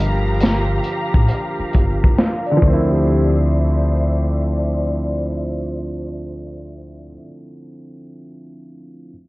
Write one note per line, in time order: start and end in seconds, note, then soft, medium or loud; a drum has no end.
0.00 0.78 G1 loud
0.00 2.50 D3 medium
0.00 2.55 F3 medium
0.00 2.58 G3 medium
0.00 2.59 A#3 medium
0.00 2.61 F4 medium
0.00 2.59 G4 medium
0.00 2.59 F5 medium
0.00 2.59 A#5 medium
0.40 snare loud
0.40 closed hi-hat medium
0.84 closed hi-hat medium
1.14 1.27 A1 medium
1.14 kick medium
1.28 closed hi-hat medium
1.60 muted upright bass stroke soft
1.73 2.11 G1 medium
1.73 kick medium
1.73 closed hi-hat medium
2.04 kick loud
2.18 2.45 F5 medium
2.18 snare loud
2.18 closed hi-hat medium
2.46 2.61 D5 medium
2.46 closed hi-hat soft
2.51 7.03 D3 medium
2.57 7.09 F3 medium
2.62 7.15 D2 medium
2.62 7.14 A3 medium
2.62 2.89 A#4 medium
2.62 7.16 C5 medium
2.62 7.16 D5 medium
2.62 7.16 E5 medium
2.62 kick loud
2.68 7.20 C4 medium
2.73 7.25 E4 medium
2.90 3.32 G4 medium